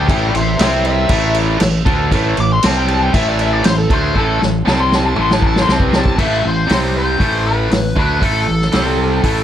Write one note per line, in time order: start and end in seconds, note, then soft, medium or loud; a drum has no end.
0.09 0.33 A1 loud
0.09 0.34 A2 loud
0.09 0.34 E3 medium
0.09 0.34 A3 loud
0.09 0.34 D5 medium
0.09 0.35 G5 medium
0.09 kick loud
0.09 crash medium
0.34 0.58 A1 medium
0.34 0.55 A2 medium
0.34 0.55 E3 medium
0.34 0.59 C5 medium
0.34 0.60 E5 medium
0.34 crash medium
0.59 1.07 C2 loud
0.59 1.10 C3 medium
0.59 1.10 G3 loud
0.59 1.10 C4 loud
0.59 0.85 C5 medium
0.59 0.85 E5 medium
0.59 snare loud
0.59 crash medium
0.85 1.35 E5 loud
0.85 crash medium
1.09 1.57 A1 loud
1.09 1.58 A2 medium
1.09 1.59 E3 medium
1.09 1.61 A3 medium
1.09 kick loud
1.09 crash loud
1.35 crash medium
1.60 1.85 A1 medium
1.60 1.81 A2 medium
1.60 1.81 E3 medium
1.60 snare loud
1.60 crash medium
1.85 2.10 D2 medium
1.85 2.11 D3 medium
1.85 2.11 A3 loud
1.85 2.11 D4 loud
1.85 kick loud
1.85 crash medium
2.12 2.36 A1 medium
2.12 2.37 A2 medium
2.12 2.37 E3 loud
2.12 2.37 A3 loud
2.12 kick medium
2.12 crash medium
2.37 2.61 A1 medium
2.37 2.58 A2 medium
2.37 2.58 E3 medium
2.37 2.51 D6 loud
2.37 crash medium
2.53 2.66 C6 medium
2.63 3.11 C2 loud
2.63 3.13 C3 loud
2.63 3.13 G3 loud
2.63 3.14 C4 loud
2.63 2.77 A5 medium
2.63 snare loud
2.63 crash medium
2.76 2.88 G5 medium
2.88 3.03 A5 medium
2.88 crash medium
3.03 3.14 G5 loud
3.13 3.61 A1 medium
3.13 3.64 A2 medium
3.13 3.64 E3 loud
3.13 3.65 A3 loud
3.13 3.28 E5 medium
3.13 kick loud
3.13 crash medium
3.28 3.41 D5 medium
3.39 3.53 E5 medium
3.39 crash medium
3.53 3.65 D5 medium
3.64 3.89 A1 medium
3.64 3.85 A2 medium
3.64 3.86 E3 medium
3.64 3.78 C5 medium
3.64 snare loud
3.64 crash medium
3.78 3.93 A4 medium
3.90 4.14 D2 medium
3.90 4.15 D3 medium
3.90 4.15 A3 loud
3.90 4.16 D4 medium
3.90 4.16 C5 medium
3.90 kick loud
3.90 crash medium
4.15 4.39 A1 loud
4.15 4.40 A2 medium
4.15 4.40 E3 loud
4.15 4.41 A3 loud
4.15 4.41 A4 loud
4.15 kick medium
4.41 4.65 A1 medium
4.41 4.61 A2 medium
4.41 4.61 E3 medium
4.41 snare medium
4.65 5.14 C2 medium
4.65 5.14 C3 loud
4.65 5.15 G3 loud
4.65 5.15 C4 loud
4.65 4.79 A5 loud
4.65 snare medium
4.81 4.95 C6 loud
4.92 5.05 A5 medium
4.92 snare medium
5.06 5.17 A5 medium
5.15 5.65 A1 loud
5.15 5.66 A2 medium
5.15 5.66 E3 medium
5.15 5.66 A3 loud
5.15 mid tom medium
5.21 5.33 C6 loud
5.31 5.44 A5 loud
5.31 snare medium
5.42 kick medium
5.47 5.57 A5 loud
5.56 snare medium
5.62 5.71 C6 loud
5.66 6.15 C2 medium
5.66 6.16 C3 medium
5.66 6.16 G3 medium
5.66 6.17 C4 loud
5.66 snare loud
5.71 5.96 B4 medium
5.71 5.94 A5 medium
5.80 kick medium
5.93 6.02 D5 medium
5.93 6.19 A5 medium
5.93 snare medium
6.06 kick medium
6.17 6.42 A1 medium
6.17 6.41 A2 medium
6.17 6.41 E3 medium
6.17 6.43 A3 medium
6.17 6.42 E5 medium
6.17 kick loud
6.17 crash medium
6.42 6.68 A1 medium
6.42 6.63 A2 medium
6.42 6.63 E3 medium
6.47 6.72 C5 medium
6.67 7.17 C2 medium
6.67 7.18 C3 loud
6.67 7.18 G3 loud
6.67 7.19 C4 loud
6.67 snare loud
6.67 open hi-hat medium
6.73 6.96 C5 medium
6.97 7.46 C5 medium
7.19 7.67 A1 medium
7.19 7.70 A2 medium
7.19 7.70 E3 medium
7.19 7.70 A3 medium
7.19 kick medium
7.19 open hi-hat soft
7.47 7.98 B4 medium
7.71 7.95 A1 medium
7.71 7.91 A2 medium
7.71 7.92 E3 medium
7.71 snare loud
7.71 open hi-hat medium
7.96 8.20 D2 medium
7.96 8.20 D3 medium
7.96 8.20 A3 medium
7.96 8.21 D4 medium
7.96 8.24 B4 medium
7.96 kick medium
8.21 8.46 A1 medium
8.21 8.45 A2 medium
8.21 8.45 E3 medium
8.21 8.46 A3 medium
8.21 kick loud
8.21 open hi-hat soft
8.25 9.44 A4 medium
8.46 8.72 A1 medium
8.46 8.67 A2 medium
8.46 8.67 E3 medium
8.61 snare soft
8.72 9.21 C2 medium
8.72 9.22 C3 medium
8.72 9.22 G3 loud
8.72 9.23 C4 loud
8.72 snare loud
8.72 open hi-hat medium
9.23 9.44 A1 medium
9.23 9.44 A2 medium
9.23 9.44 E3 medium
9.23 9.44 A3 medium
9.23 kick loud
9.23 open hi-hat medium